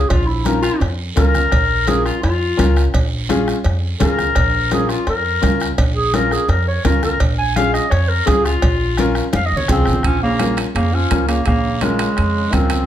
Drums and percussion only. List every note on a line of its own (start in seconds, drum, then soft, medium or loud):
0.10 bombo low medium
0.10 bombo rim medium
0.10 cowbell loud
0.10 high conga soft
0.10 long guiro medium
0.45 bombo rim medium
0.45 cowbell medium
0.45 high conga medium
0.45 short guiro medium
0.63 bombo rim medium
0.63 short guiro medium
0.80 bombo rim medium
0.80 cowbell medium
0.80 high conga soft
0.80 long guiro medium
1.17 bombo low medium
1.17 bombo rim medium
1.17 cowbell medium
1.17 high conga medium
1.17 low conga medium
1.17 short guiro medium
1.34 bombo rim medium
1.34 low conga medium
1.34 short guiro medium
1.52 bombo low medium
1.52 bombo rim medium
1.52 cowbell loud
1.52 high conga soft
1.52 long guiro medium
1.87 bombo rim medium
1.87 cowbell medium
1.87 high conga medium
1.87 short guiro medium
2.06 bombo rim medium
2.06 short guiro medium
2.23 bombo rim medium
2.23 cowbell medium
2.23 high conga soft
2.23 long guiro medium
2.59 bombo low medium
2.59 bombo rim medium
2.59 cowbell medium
2.59 high conga medium
2.59 low timbale medium
2.59 short guiro medium
2.76 bombo rim medium
2.76 short guiro medium
2.94 bombo low medium
2.94 bombo rim medium
2.94 cowbell loud
2.94 high conga soft
2.94 long guiro medium
3.29 bombo rim medium
3.29 cowbell medium
3.29 high conga medium
3.29 short guiro medium
3.48 bombo rim medium
3.48 short guiro medium
3.64 bombo rim medium
3.64 cowbell medium
3.64 high conga soft
3.64 long guiro medium
4.00 bombo low medium
4.00 bombo rim medium
4.00 cowbell medium
4.00 high conga medium
4.00 low conga medium
4.00 low timbale medium
4.00 short guiro medium
4.19 bombo rim medium
4.19 low conga medium
4.19 short guiro medium
4.35 bombo low medium
4.35 bombo rim medium
4.35 cowbell loud
4.35 high conga soft
4.35 long guiro medium
4.71 bombo rim medium
4.71 cowbell medium
4.71 high conga medium
4.71 short guiro medium
4.89 bombo rim medium
4.89 short guiro medium
5.07 bombo rim medium
5.07 cowbell medium
5.07 high conga soft
5.07 long guiro medium
5.43 bombo low medium
5.43 bombo rim medium
5.43 cowbell medium
5.43 high conga medium
5.43 low timbale medium
5.43 short guiro medium
5.60 bombo rim medium
5.60 short guiro medium
5.78 bombo low medium
5.78 bombo rim medium
5.78 cowbell loud
5.78 high conga soft
5.78 long guiro medium
6.14 bombo rim medium
6.14 cowbell medium
6.14 high conga medium
6.14 short guiro medium
6.31 bombo rim medium
6.31 short guiro medium
6.49 bombo rim medium
6.49 cowbell medium
6.49 high conga soft
6.49 long guiro medium
6.85 bombo low medium
6.85 bombo rim medium
6.85 cowbell medium
6.85 high conga medium
6.85 low conga medium
6.85 low timbale medium
6.85 short guiro medium
7.03 bombo rim medium
7.03 low conga medium
7.03 short guiro medium
7.20 bombo low medium
7.20 bombo rim medium
7.20 cowbell loud
7.20 high conga soft
7.20 long guiro medium
7.56 bombo rim medium
7.56 cowbell medium
7.56 high conga medium
7.56 short guiro medium
7.74 bombo rim medium
7.74 short guiro medium
7.91 bombo rim medium
7.91 cowbell medium
7.91 high conga soft
7.91 long guiro medium
8.27 bombo low medium
8.27 bombo rim medium
8.27 cowbell medium
8.27 high conga medium
8.27 low timbale medium
8.27 short guiro medium
8.45 bombo rim medium
8.45 short guiro medium
8.62 bombo low medium
8.62 bombo rim medium
8.62 cowbell loud
8.62 high conga soft
8.62 long guiro medium
8.97 bombo rim medium
8.97 cowbell medium
8.97 high conga medium
8.97 short guiro medium
9.15 bombo rim medium
9.15 short guiro medium
9.33 bombo rim medium
9.33 cowbell medium
9.33 high conga loud
9.33 long guiro medium
9.57 low conga medium
9.68 bombo low medium
9.68 bombo rim medium
9.68 cowbell medium
9.68 low conga medium
9.68 low timbale medium
9.68 short guiro medium
9.86 bombo rim medium
9.86 short guiro medium
9.93 low conga medium
10.03 bombo low medium
10.03 bombo rim medium
10.03 high conga soft
10.03 high timbale medium
10.03 long guiro medium
10.39 bombo rim medium
10.39 high conga medium
10.39 high timbale medium
10.39 short guiro medium
10.57 bombo rim medium
10.57 high timbale medium
10.57 short guiro medium
10.75 bombo rim medium
10.75 high conga soft
10.75 high timbale medium
10.75 long guiro medium
11.10 bombo low medium
11.10 bombo rim medium
11.10 high conga medium
11.10 high timbale medium
11.10 short guiro medium
11.29 bombo rim medium
11.29 high timbale medium
11.29 short guiro medium
11.46 bombo low medium
11.46 bombo rim medium
11.46 high conga soft
11.46 high timbale medium
11.46 long guiro medium
11.81 bombo rim medium
11.81 high conga medium
11.81 high timbale medium
11.81 short guiro medium
11.99 bombo rim medium
11.99 high timbale medium
11.99 short guiro medium
12.17 bombo rim medium
12.17 high conga soft
12.17 high timbale medium
12.17 long guiro medium
12.53 bombo low medium
12.53 bombo rim medium
12.53 high conga medium
12.53 low conga medium
12.53 high timbale medium
12.53 short guiro medium
12.70 bombo rim medium
12.70 low conga medium
12.70 high timbale medium
12.70 short guiro medium